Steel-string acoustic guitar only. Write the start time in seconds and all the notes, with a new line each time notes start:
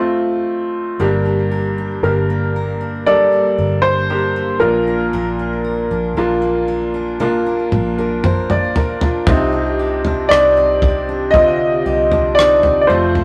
1.00 G3 A#4
1.25 D4
1.51 A#4
1.78 D4
2.04 A#4
2.30 A#3
2.56 A#4
2.81 D4
3.07 G3 A#4
3.32 D4
3.58 A#4
3.85 D4
4.10 A#4
4.36 A#3
4.61 A#2
4.87 D4
5.13 A#2 A#4
5.39 D4
5.64 A#4
5.91 D4
6.17 A#4
6.42 A#3
6.68 A#4
6.94 D4
7.20 A#2 A#4
7.46 D4
7.72 A#4
7.98 D4
8.24 A#4
8.50 A#3
8.76 A#4
9.01 D4
9.27 C3 G4
9.52 D4
9.79 G4
10.05 D4
10.31 G4
10.57 C4
10.83 G4
11.09 D4
11.34 C3 G4
11.86 G4
12.13 D4
12.38 G4
12.63 C4
12.90 F3
13.15 F4